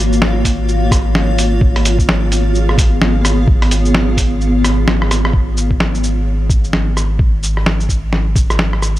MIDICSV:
0, 0, Header, 1, 4, 480
1, 0, Start_track
1, 0, Tempo, 465116
1, 1668, Time_signature, 4, 2, 24, 8
1, 9282, End_track
2, 0, Start_track
2, 0, Title_t, "Ambient pad"
2, 0, Program_c, 0, 92
2, 0, Note_on_c, 0, 58, 79
2, 0, Note_on_c, 0, 65, 83
2, 0, Note_on_c, 0, 66, 69
2, 0, Note_on_c, 0, 73, 70
2, 0, Note_on_c, 0, 77, 86
2, 1661, Note_on_c, 0, 59, 84
2, 1668, Note_off_c, 0, 66, 0
2, 1669, Note_off_c, 0, 58, 0
2, 1950, Note_on_c, 0, 68, 76
2, 5503, Note_off_c, 0, 77, 0
2, 5504, Note_off_c, 0, 59, 0
2, 5504, Note_off_c, 0, 68, 0
2, 5507, Note_off_c, 0, 65, 0
2, 5508, Note_off_c, 0, 73, 0
2, 9282, End_track
3, 0, Start_track
3, 0, Title_t, "Sub bass"
3, 0, Program_c, 1, 38
3, 0, Note_on_c, 1, 32, 87
3, 1647, Note_off_c, 1, 32, 0
3, 1664, Note_on_c, 1, 32, 93
3, 5487, Note_off_c, 1, 32, 0
3, 5505, Note_on_c, 1, 32, 79
3, 9282, Note_off_c, 1, 32, 0
3, 9282, End_track
4, 0, Start_track
4, 0, Title_t, "Drums"
4, 129, Note_on_c, 9, 82, 30
4, 224, Note_on_c, 9, 38, 105
4, 232, Note_off_c, 9, 82, 0
4, 328, Note_off_c, 9, 38, 0
4, 462, Note_on_c, 9, 36, 57
4, 466, Note_on_c, 9, 46, 75
4, 466, Note_on_c, 9, 82, 52
4, 565, Note_off_c, 9, 36, 0
4, 569, Note_off_c, 9, 46, 0
4, 569, Note_off_c, 9, 82, 0
4, 708, Note_on_c, 9, 82, 32
4, 811, Note_off_c, 9, 82, 0
4, 943, Note_on_c, 9, 36, 100
4, 948, Note_on_c, 9, 37, 64
4, 948, Note_on_c, 9, 46, 77
4, 948, Note_on_c, 9, 82, 54
4, 1046, Note_off_c, 9, 36, 0
4, 1051, Note_off_c, 9, 37, 0
4, 1051, Note_off_c, 9, 46, 0
4, 1051, Note_off_c, 9, 82, 0
4, 1187, Note_on_c, 9, 38, 99
4, 1290, Note_off_c, 9, 38, 0
4, 1429, Note_on_c, 9, 46, 76
4, 1429, Note_on_c, 9, 82, 53
4, 1532, Note_off_c, 9, 46, 0
4, 1532, Note_off_c, 9, 82, 0
4, 1664, Note_on_c, 9, 36, 111
4, 1767, Note_off_c, 9, 36, 0
4, 1816, Note_on_c, 9, 37, 39
4, 1816, Note_on_c, 9, 46, 47
4, 1913, Note_off_c, 9, 46, 0
4, 1913, Note_on_c, 9, 46, 81
4, 1913, Note_on_c, 9, 82, 59
4, 1920, Note_off_c, 9, 37, 0
4, 2016, Note_off_c, 9, 46, 0
4, 2016, Note_off_c, 9, 82, 0
4, 2051, Note_on_c, 9, 36, 59
4, 2060, Note_on_c, 9, 82, 30
4, 2154, Note_off_c, 9, 36, 0
4, 2154, Note_on_c, 9, 38, 107
4, 2163, Note_off_c, 9, 82, 0
4, 2257, Note_off_c, 9, 38, 0
4, 2392, Note_on_c, 9, 46, 74
4, 2392, Note_on_c, 9, 82, 54
4, 2496, Note_off_c, 9, 46, 0
4, 2496, Note_off_c, 9, 82, 0
4, 2633, Note_on_c, 9, 82, 32
4, 2736, Note_off_c, 9, 82, 0
4, 2778, Note_on_c, 9, 37, 55
4, 2867, Note_on_c, 9, 36, 99
4, 2875, Note_on_c, 9, 46, 81
4, 2875, Note_on_c, 9, 82, 55
4, 2881, Note_off_c, 9, 37, 0
4, 2970, Note_off_c, 9, 36, 0
4, 2978, Note_off_c, 9, 46, 0
4, 2978, Note_off_c, 9, 82, 0
4, 3112, Note_on_c, 9, 38, 99
4, 3215, Note_off_c, 9, 38, 0
4, 3352, Note_on_c, 9, 37, 63
4, 3352, Note_on_c, 9, 46, 72
4, 3352, Note_on_c, 9, 82, 55
4, 3455, Note_off_c, 9, 37, 0
4, 3455, Note_off_c, 9, 46, 0
4, 3455, Note_off_c, 9, 82, 0
4, 3587, Note_on_c, 9, 36, 115
4, 3691, Note_off_c, 9, 36, 0
4, 3738, Note_on_c, 9, 37, 41
4, 3738, Note_on_c, 9, 46, 47
4, 3832, Note_off_c, 9, 46, 0
4, 3832, Note_on_c, 9, 46, 80
4, 3832, Note_on_c, 9, 82, 57
4, 3841, Note_off_c, 9, 37, 0
4, 3935, Note_off_c, 9, 46, 0
4, 3935, Note_off_c, 9, 82, 0
4, 3976, Note_on_c, 9, 82, 30
4, 4071, Note_on_c, 9, 38, 105
4, 4080, Note_off_c, 9, 82, 0
4, 4174, Note_off_c, 9, 38, 0
4, 4307, Note_on_c, 9, 36, 58
4, 4312, Note_on_c, 9, 46, 76
4, 4312, Note_on_c, 9, 82, 55
4, 4410, Note_off_c, 9, 36, 0
4, 4415, Note_off_c, 9, 46, 0
4, 4415, Note_off_c, 9, 82, 0
4, 4553, Note_on_c, 9, 82, 32
4, 4656, Note_off_c, 9, 82, 0
4, 4794, Note_on_c, 9, 37, 69
4, 4794, Note_on_c, 9, 46, 78
4, 4794, Note_on_c, 9, 82, 59
4, 4897, Note_off_c, 9, 37, 0
4, 4897, Note_off_c, 9, 46, 0
4, 4897, Note_off_c, 9, 82, 0
4, 5032, Note_on_c, 9, 37, 61
4, 5032, Note_on_c, 9, 38, 102
4, 5136, Note_off_c, 9, 37, 0
4, 5136, Note_off_c, 9, 38, 0
4, 5180, Note_on_c, 9, 37, 64
4, 5275, Note_off_c, 9, 37, 0
4, 5275, Note_on_c, 9, 37, 83
4, 5275, Note_on_c, 9, 46, 75
4, 5275, Note_on_c, 9, 82, 56
4, 5378, Note_off_c, 9, 37, 0
4, 5378, Note_off_c, 9, 46, 0
4, 5378, Note_off_c, 9, 82, 0
4, 5418, Note_on_c, 9, 37, 83
4, 5505, Note_on_c, 9, 36, 102
4, 5521, Note_off_c, 9, 37, 0
4, 5609, Note_off_c, 9, 36, 0
4, 5750, Note_on_c, 9, 82, 59
4, 5853, Note_off_c, 9, 82, 0
4, 5889, Note_on_c, 9, 36, 59
4, 5988, Note_on_c, 9, 38, 102
4, 5993, Note_off_c, 9, 36, 0
4, 6092, Note_off_c, 9, 38, 0
4, 6138, Note_on_c, 9, 82, 32
4, 6231, Note_off_c, 9, 82, 0
4, 6231, Note_on_c, 9, 82, 52
4, 6334, Note_off_c, 9, 82, 0
4, 6704, Note_on_c, 9, 36, 99
4, 6708, Note_on_c, 9, 82, 54
4, 6807, Note_off_c, 9, 36, 0
4, 6811, Note_off_c, 9, 82, 0
4, 6855, Note_on_c, 9, 82, 31
4, 6948, Note_on_c, 9, 38, 93
4, 6958, Note_off_c, 9, 82, 0
4, 7051, Note_off_c, 9, 38, 0
4, 7192, Note_on_c, 9, 37, 51
4, 7192, Note_on_c, 9, 82, 55
4, 7295, Note_off_c, 9, 37, 0
4, 7295, Note_off_c, 9, 82, 0
4, 7422, Note_on_c, 9, 36, 114
4, 7525, Note_off_c, 9, 36, 0
4, 7669, Note_on_c, 9, 82, 57
4, 7772, Note_off_c, 9, 82, 0
4, 7813, Note_on_c, 9, 37, 34
4, 7908, Note_on_c, 9, 38, 99
4, 7916, Note_off_c, 9, 37, 0
4, 8011, Note_off_c, 9, 38, 0
4, 8053, Note_on_c, 9, 82, 31
4, 8143, Note_on_c, 9, 36, 58
4, 8148, Note_off_c, 9, 82, 0
4, 8148, Note_on_c, 9, 82, 53
4, 8246, Note_off_c, 9, 36, 0
4, 8251, Note_off_c, 9, 82, 0
4, 8386, Note_on_c, 9, 38, 62
4, 8489, Note_off_c, 9, 38, 0
4, 8623, Note_on_c, 9, 36, 104
4, 8628, Note_on_c, 9, 82, 53
4, 8726, Note_off_c, 9, 36, 0
4, 8731, Note_off_c, 9, 82, 0
4, 8775, Note_on_c, 9, 37, 65
4, 8775, Note_on_c, 9, 82, 30
4, 8864, Note_on_c, 9, 38, 96
4, 8878, Note_off_c, 9, 37, 0
4, 8878, Note_off_c, 9, 82, 0
4, 8968, Note_off_c, 9, 38, 0
4, 9012, Note_on_c, 9, 37, 48
4, 9107, Note_off_c, 9, 37, 0
4, 9107, Note_on_c, 9, 37, 48
4, 9107, Note_on_c, 9, 82, 55
4, 9210, Note_off_c, 9, 37, 0
4, 9210, Note_off_c, 9, 82, 0
4, 9282, End_track
0, 0, End_of_file